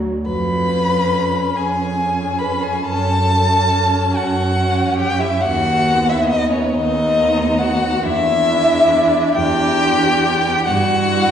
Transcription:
0, 0, Header, 1, 5, 480
1, 0, Start_track
1, 0, Tempo, 859599
1, 154, Time_signature, 12, 3, 24, 8
1, 3034, Tempo, 872093
1, 6268, End_track
2, 0, Start_track
2, 0, Title_t, "Violin"
2, 0, Program_c, 0, 40
2, 143, Note_on_c, 0, 83, 102
2, 874, Note_on_c, 0, 80, 89
2, 882, Note_off_c, 0, 83, 0
2, 1332, Note_on_c, 0, 83, 89
2, 1340, Note_off_c, 0, 80, 0
2, 1468, Note_on_c, 0, 80, 91
2, 1477, Note_off_c, 0, 83, 0
2, 1590, Note_on_c, 0, 81, 120
2, 1598, Note_off_c, 0, 80, 0
2, 2324, Note_on_c, 0, 78, 109
2, 2332, Note_off_c, 0, 81, 0
2, 2789, Note_off_c, 0, 78, 0
2, 2793, Note_on_c, 0, 79, 113
2, 2907, Note_on_c, 0, 76, 102
2, 2915, Note_off_c, 0, 79, 0
2, 3021, Note_on_c, 0, 78, 122
2, 3029, Note_off_c, 0, 76, 0
2, 3397, Note_on_c, 0, 76, 99
2, 3405, Note_off_c, 0, 78, 0
2, 3506, Note_off_c, 0, 76, 0
2, 3510, Note_on_c, 0, 75, 104
2, 3629, Note_off_c, 0, 75, 0
2, 3632, Note_on_c, 0, 73, 82
2, 3754, Note_on_c, 0, 75, 104
2, 3762, Note_off_c, 0, 73, 0
2, 4218, Note_on_c, 0, 78, 103
2, 4226, Note_off_c, 0, 75, 0
2, 4461, Note_on_c, 0, 76, 121
2, 4469, Note_off_c, 0, 78, 0
2, 5185, Note_off_c, 0, 76, 0
2, 5187, Note_on_c, 0, 79, 127
2, 5899, Note_off_c, 0, 79, 0
2, 5907, Note_on_c, 0, 78, 127
2, 6268, Note_off_c, 0, 78, 0
2, 6268, End_track
3, 0, Start_track
3, 0, Title_t, "Violin"
3, 0, Program_c, 1, 40
3, 147, Note_on_c, 1, 71, 97
3, 847, Note_off_c, 1, 71, 0
3, 866, Note_on_c, 1, 68, 88
3, 1342, Note_on_c, 1, 71, 86
3, 1351, Note_off_c, 1, 68, 0
3, 1456, Note_on_c, 1, 68, 87
3, 1464, Note_off_c, 1, 71, 0
3, 1579, Note_on_c, 1, 69, 97
3, 1588, Note_off_c, 1, 68, 0
3, 2304, Note_on_c, 1, 66, 84
3, 2312, Note_off_c, 1, 69, 0
3, 2771, Note_off_c, 1, 66, 0
3, 2774, Note_on_c, 1, 67, 86
3, 2897, Note_on_c, 1, 64, 80
3, 2905, Note_off_c, 1, 67, 0
3, 3024, Note_on_c, 1, 66, 95
3, 3033, Note_off_c, 1, 64, 0
3, 3399, Note_on_c, 1, 64, 86
3, 3407, Note_off_c, 1, 66, 0
3, 3513, Note_on_c, 1, 63, 89
3, 3521, Note_off_c, 1, 64, 0
3, 3624, Note_on_c, 1, 61, 76
3, 3632, Note_off_c, 1, 63, 0
3, 3749, Note_off_c, 1, 61, 0
3, 3754, Note_on_c, 1, 63, 104
3, 4234, Note_on_c, 1, 66, 101
3, 4243, Note_off_c, 1, 63, 0
3, 4465, Note_on_c, 1, 64, 101
3, 4473, Note_off_c, 1, 66, 0
3, 5179, Note_on_c, 1, 67, 122
3, 5187, Note_off_c, 1, 64, 0
3, 5909, Note_on_c, 1, 66, 124
3, 5918, Note_off_c, 1, 67, 0
3, 6268, Note_off_c, 1, 66, 0
3, 6268, End_track
4, 0, Start_track
4, 0, Title_t, "Viola"
4, 0, Program_c, 2, 41
4, 0, Note_on_c, 2, 54, 68
4, 143, Note_off_c, 2, 54, 0
4, 383, Note_on_c, 2, 61, 65
4, 1092, Note_off_c, 2, 61, 0
4, 1107, Note_on_c, 2, 61, 63
4, 1572, Note_off_c, 2, 61, 0
4, 1576, Note_on_c, 2, 61, 67
4, 1819, Note_off_c, 2, 61, 0
4, 1822, Note_on_c, 2, 61, 76
4, 2533, Note_off_c, 2, 61, 0
4, 2545, Note_on_c, 2, 61, 82
4, 3019, Note_off_c, 2, 61, 0
4, 3270, Note_on_c, 2, 59, 77
4, 3975, Note_off_c, 2, 59, 0
4, 3995, Note_on_c, 2, 59, 75
4, 4455, Note_off_c, 2, 59, 0
4, 4458, Note_on_c, 2, 62, 62
4, 4690, Note_off_c, 2, 62, 0
4, 4693, Note_on_c, 2, 62, 87
4, 5410, Note_off_c, 2, 62, 0
4, 5420, Note_on_c, 2, 62, 86
4, 5899, Note_off_c, 2, 62, 0
4, 6143, Note_on_c, 2, 64, 89
4, 6268, Note_off_c, 2, 64, 0
4, 6268, End_track
5, 0, Start_track
5, 0, Title_t, "Cello"
5, 0, Program_c, 3, 42
5, 0, Note_on_c, 3, 38, 71
5, 67, Note_off_c, 3, 38, 0
5, 145, Note_on_c, 3, 41, 85
5, 784, Note_off_c, 3, 41, 0
5, 872, Note_on_c, 3, 41, 72
5, 1503, Note_off_c, 3, 41, 0
5, 1582, Note_on_c, 3, 42, 80
5, 2225, Note_off_c, 3, 42, 0
5, 2311, Note_on_c, 3, 42, 81
5, 2946, Note_off_c, 3, 42, 0
5, 3034, Note_on_c, 3, 39, 89
5, 3672, Note_off_c, 3, 39, 0
5, 3760, Note_on_c, 3, 39, 90
5, 4386, Note_off_c, 3, 39, 0
5, 4470, Note_on_c, 3, 40, 94
5, 5104, Note_off_c, 3, 40, 0
5, 5192, Note_on_c, 3, 40, 99
5, 5830, Note_off_c, 3, 40, 0
5, 5913, Note_on_c, 3, 43, 102
5, 6268, Note_off_c, 3, 43, 0
5, 6268, End_track
0, 0, End_of_file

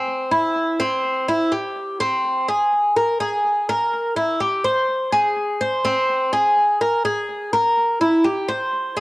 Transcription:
0, 0, Header, 1, 2, 480
1, 0, Start_track
1, 0, Tempo, 480384
1, 76, Time_signature, 4, 2, 24, 8
1, 8994, End_track
2, 0, Start_track
2, 0, Title_t, "Cuban tres"
2, 0, Program_c, 0, 25
2, 0, Note_on_c, 0, 60, 83
2, 302, Note_off_c, 0, 60, 0
2, 314, Note_on_c, 0, 64, 71
2, 781, Note_off_c, 0, 64, 0
2, 796, Note_on_c, 0, 60, 83
2, 1263, Note_off_c, 0, 60, 0
2, 1283, Note_on_c, 0, 64, 76
2, 1513, Note_off_c, 0, 64, 0
2, 1517, Note_on_c, 0, 67, 68
2, 1983, Note_off_c, 0, 67, 0
2, 2001, Note_on_c, 0, 60, 89
2, 2465, Note_off_c, 0, 60, 0
2, 2483, Note_on_c, 0, 68, 73
2, 2946, Note_off_c, 0, 68, 0
2, 2962, Note_on_c, 0, 70, 69
2, 3193, Note_off_c, 0, 70, 0
2, 3200, Note_on_c, 0, 68, 80
2, 3664, Note_off_c, 0, 68, 0
2, 3687, Note_on_c, 0, 70, 83
2, 4148, Note_off_c, 0, 70, 0
2, 4160, Note_on_c, 0, 64, 71
2, 4391, Note_off_c, 0, 64, 0
2, 4399, Note_on_c, 0, 67, 71
2, 4631, Note_off_c, 0, 67, 0
2, 4639, Note_on_c, 0, 72, 83
2, 5103, Note_off_c, 0, 72, 0
2, 5120, Note_on_c, 0, 68, 89
2, 5583, Note_off_c, 0, 68, 0
2, 5603, Note_on_c, 0, 72, 83
2, 5832, Note_off_c, 0, 72, 0
2, 5841, Note_on_c, 0, 60, 89
2, 6304, Note_off_c, 0, 60, 0
2, 6322, Note_on_c, 0, 68, 80
2, 6784, Note_off_c, 0, 68, 0
2, 6805, Note_on_c, 0, 70, 76
2, 7033, Note_off_c, 0, 70, 0
2, 7043, Note_on_c, 0, 68, 74
2, 7505, Note_off_c, 0, 68, 0
2, 7524, Note_on_c, 0, 70, 86
2, 7986, Note_off_c, 0, 70, 0
2, 8002, Note_on_c, 0, 64, 71
2, 8232, Note_off_c, 0, 64, 0
2, 8237, Note_on_c, 0, 67, 71
2, 8470, Note_off_c, 0, 67, 0
2, 8478, Note_on_c, 0, 72, 79
2, 8943, Note_off_c, 0, 72, 0
2, 8960, Note_on_c, 0, 68, 83
2, 8994, Note_off_c, 0, 68, 0
2, 8994, End_track
0, 0, End_of_file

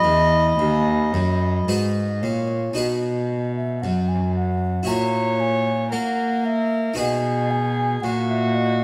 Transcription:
0, 0, Header, 1, 5, 480
1, 0, Start_track
1, 0, Key_signature, 5, "major"
1, 0, Tempo, 1094891
1, 1214, Time_signature, 4, 2, 24, 8
1, 1214, Tempo, 1052632
1, 3982, End_track
2, 0, Start_track
2, 0, Title_t, "Flute"
2, 0, Program_c, 0, 73
2, 0, Note_on_c, 0, 83, 96
2, 735, Note_off_c, 0, 83, 0
2, 974, Note_on_c, 0, 73, 70
2, 1213, Note_on_c, 0, 75, 56
2, 1220, Note_off_c, 0, 73, 0
2, 1571, Note_off_c, 0, 75, 0
2, 1574, Note_on_c, 0, 76, 72
2, 1693, Note_on_c, 0, 78, 64
2, 1700, Note_off_c, 0, 76, 0
2, 1814, Note_on_c, 0, 80, 65
2, 1821, Note_off_c, 0, 78, 0
2, 1935, Note_off_c, 0, 80, 0
2, 1937, Note_on_c, 0, 78, 73
2, 2175, Note_on_c, 0, 82, 77
2, 2182, Note_off_c, 0, 78, 0
2, 2415, Note_on_c, 0, 80, 73
2, 2422, Note_off_c, 0, 82, 0
2, 2654, Note_on_c, 0, 78, 78
2, 2660, Note_off_c, 0, 80, 0
2, 2894, Note_on_c, 0, 76, 89
2, 2901, Note_off_c, 0, 78, 0
2, 3132, Note_off_c, 0, 76, 0
2, 3135, Note_on_c, 0, 75, 79
2, 3374, Note_on_c, 0, 80, 81
2, 3381, Note_off_c, 0, 75, 0
2, 3610, Note_on_c, 0, 78, 71
2, 3617, Note_off_c, 0, 80, 0
2, 3727, Note_off_c, 0, 78, 0
2, 3730, Note_on_c, 0, 76, 76
2, 3852, Note_on_c, 0, 75, 93
2, 3859, Note_off_c, 0, 76, 0
2, 3982, Note_off_c, 0, 75, 0
2, 3982, End_track
3, 0, Start_track
3, 0, Title_t, "Violin"
3, 0, Program_c, 1, 40
3, 0, Note_on_c, 1, 75, 87
3, 957, Note_off_c, 1, 75, 0
3, 2175, Note_on_c, 1, 73, 70
3, 2636, Note_off_c, 1, 73, 0
3, 2652, Note_on_c, 1, 70, 65
3, 3124, Note_off_c, 1, 70, 0
3, 3136, Note_on_c, 1, 68, 73
3, 3618, Note_on_c, 1, 66, 68
3, 3625, Note_off_c, 1, 68, 0
3, 3982, Note_off_c, 1, 66, 0
3, 3982, End_track
4, 0, Start_track
4, 0, Title_t, "Harpsichord"
4, 0, Program_c, 2, 6
4, 0, Note_on_c, 2, 63, 47
4, 0, Note_on_c, 2, 66, 44
4, 0, Note_on_c, 2, 71, 55
4, 16, Note_on_c, 2, 40, 61
4, 123, Note_off_c, 2, 63, 0
4, 124, Note_off_c, 2, 66, 0
4, 125, Note_off_c, 2, 71, 0
4, 240, Note_off_c, 2, 40, 0
4, 260, Note_on_c, 2, 39, 48
4, 481, Note_off_c, 2, 39, 0
4, 500, Note_on_c, 2, 42, 56
4, 720, Note_off_c, 2, 42, 0
4, 738, Note_on_c, 2, 44, 53
4, 738, Note_on_c, 2, 63, 50
4, 739, Note_on_c, 2, 66, 47
4, 742, Note_on_c, 2, 71, 49
4, 959, Note_off_c, 2, 44, 0
4, 978, Note_on_c, 2, 46, 58
4, 1081, Note_off_c, 2, 63, 0
4, 1082, Note_off_c, 2, 66, 0
4, 1084, Note_off_c, 2, 71, 0
4, 1197, Note_off_c, 2, 46, 0
4, 1199, Note_on_c, 2, 63, 37
4, 1205, Note_on_c, 2, 66, 36
4, 1213, Note_on_c, 2, 71, 36
4, 1219, Note_on_c, 2, 47, 40
4, 1681, Note_off_c, 2, 47, 0
4, 1701, Note_on_c, 2, 42, 50
4, 2149, Note_off_c, 2, 63, 0
4, 2152, Note_off_c, 2, 66, 0
4, 2154, Note_on_c, 2, 64, 41
4, 2156, Note_off_c, 2, 71, 0
4, 2159, Note_off_c, 2, 42, 0
4, 2162, Note_on_c, 2, 66, 41
4, 2169, Note_on_c, 2, 73, 43
4, 2175, Note_on_c, 2, 46, 45
4, 2636, Note_off_c, 2, 46, 0
4, 2652, Note_on_c, 2, 58, 49
4, 3106, Note_off_c, 2, 64, 0
4, 3110, Note_off_c, 2, 66, 0
4, 3113, Note_off_c, 2, 73, 0
4, 3114, Note_on_c, 2, 63, 42
4, 3115, Note_off_c, 2, 58, 0
4, 3121, Note_on_c, 2, 66, 38
4, 3127, Note_on_c, 2, 71, 42
4, 3135, Note_on_c, 2, 47, 45
4, 3597, Note_off_c, 2, 47, 0
4, 3616, Note_on_c, 2, 46, 55
4, 3982, Note_off_c, 2, 46, 0
4, 3982, Note_off_c, 2, 63, 0
4, 3982, Note_off_c, 2, 66, 0
4, 3982, Note_off_c, 2, 71, 0
4, 3982, End_track
5, 0, Start_track
5, 0, Title_t, "Cello"
5, 0, Program_c, 3, 42
5, 13, Note_on_c, 3, 40, 67
5, 251, Note_off_c, 3, 40, 0
5, 256, Note_on_c, 3, 39, 81
5, 495, Note_on_c, 3, 42, 69
5, 502, Note_off_c, 3, 39, 0
5, 732, Note_off_c, 3, 42, 0
5, 735, Note_on_c, 3, 44, 60
5, 973, Note_on_c, 3, 46, 58
5, 980, Note_off_c, 3, 44, 0
5, 1211, Note_off_c, 3, 46, 0
5, 1214, Note_on_c, 3, 47, 53
5, 1696, Note_on_c, 3, 42, 57
5, 1703, Note_off_c, 3, 47, 0
5, 2175, Note_off_c, 3, 42, 0
5, 2177, Note_on_c, 3, 46, 61
5, 2654, Note_on_c, 3, 58, 52
5, 2661, Note_off_c, 3, 46, 0
5, 3133, Note_off_c, 3, 58, 0
5, 3135, Note_on_c, 3, 47, 62
5, 3606, Note_off_c, 3, 47, 0
5, 3616, Note_on_c, 3, 46, 74
5, 3982, Note_off_c, 3, 46, 0
5, 3982, End_track
0, 0, End_of_file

